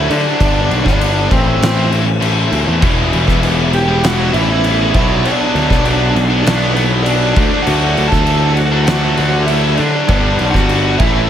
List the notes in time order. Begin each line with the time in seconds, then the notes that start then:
Already playing: E5
0.09 D3 F#3 A3 D4 D5, crash
0.25 F#3 A3 D4
0.39 G1 G2 D3 G3 B3 D4, kick, crash
0.70 B1, crash
0.85 G1 G3 B3 D4 D5, kick, snare
0.99 G2 D3 G3 B3 D4, crash
1.30 A1 A2 E3 A3 C4 E4 C5, kick, crash
1.45 A3 C4 E4
1.61 A1, snare, crash
1.76 A3 C4 E4
1.90 E3 A3 C4 E4, crash
2.06 muted distorted electric guitar stroke
2.21 A2 E3 A3 C4 E4, crash
2.50 D2 E3 A3 C4 E4, crash
2.65 E2 A3 C4 E4
2.80 E1 E2 B2 E3 G3 B3 E4, kick, crash
2.85 E3
3.13 E1, crash
3.28 E1 G3 B3 E4, kick, snare
3.43 E3 G3 B3 E4, crash
3.73 G4 G5, muted distorted electric guitar stroke, crash
3.88 G3 B3 E4
4.04 F#4 F#5, snare, crash
4.18 G3 B3 E4
4.33 A1 B2 E3 G3 B3 E4 E5, crash
4.38 E2
4.49 muted distorted electric guitar stroke
4.63 E2 B2 E3 G3 B3 E4, crash
4.68 E3
4.94 B1 B2 F#3 B3 D4 E4 E5, kick, crash
5.09 F#3 B3 D4
5.24 B2 F#3 B3 D4 D5, crash
5.55 D2, crash
5.69 B1 F#3 B3 D4, kick, snare
5.84 B2 F#3 B3 D4, crash
6.15 B1, muted distorted electric guitar stroke, crash
6.30 F#3 B3 D4
6.43 B1 B2 D4 D5, crash
6.48 F#3 B3, snare
6.60 F#3 B3 D4
6.74 B2 F#3 B3 B4, crash
6.78 D4
6.92 muted distorted electric guitar stroke
7.03 B2 F#3 B3 D4 D5, crash
7.36 D2 D3 F#3 A3 D4, kick, crash
7.51 F#3 A3 D4
7.62 D3 F#5
7.67 D2 F#3 A3 D4 F#4, crash
7.97 D2, crash
8.08 A5
8.12 D2 F#3 A3 D4 A4, kick, snare
8.26 D3 F#3 A3 D4, crash
8.54 F#5, muted distorted electric guitar stroke, crash
8.58 F#4
8.72 F#3 A3 D4
8.85 D3 F#4 F#5, snare, crash
8.89 A3 D4
9.03 F#3 A3 D4
9.17 D2 D3 F#3 A3 D4, crash
9.21 D3
9.34 muted distorted electric guitar stroke
9.46 D3 F#3 A3 D4 E4 E5, crash
9.75 D3 F#3 D4 D5, crash
9.79 D3 A3 D4
9.93 F#3 A3 D4
10.07 G1 G2 D3 G3 B3 D4, kick, crash
10.39 B1, crash
10.50 G1 D4 F#4 F#5, kick
10.54 G3 B3, snare
10.69 G2 D3 G3 B3 D4, crash
10.98 A1 A2 E3 A3 C4 E4 E5, kick, crash
11.13 A3 C4 E4